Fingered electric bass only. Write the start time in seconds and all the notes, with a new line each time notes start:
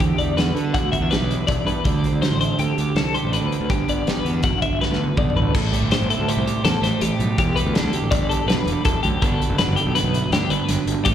0.00 E2
0.18 E2
0.36 E2
0.54 D3
0.83 D2
1.00 E2
1.20 B1
1.49 B1
1.65 G2
1.85 D2
2.12 D2
2.30 A1
2.59 D2
2.78 D2
2.95 C2
3.23 A1
3.42 D2
3.60 D2
3.70 G1
3.88 G1
4.07 G1
4.25 E2
4.52 F#1
4.71 G1
4.90 D2
5.17 B1
5.36 A1
5.55 A1
5.82 G1
6.00 G1
6.19 D2
6.37 C2
6.65 E2
6.82 A1
7.02 A1
7.19 B1
7.38 E1
7.65 D2
7.84 D2
8.02 A1
8.19 G1
8.46 B1
8.66 E1
8.85 E1
9.04 D2
9.22 G1
9.49 F#1
9.67 F#1
9.85 B1
10.03 B1
10.31 D2
10.49 G1
10.69 G1
10.87 G1
11.06 A1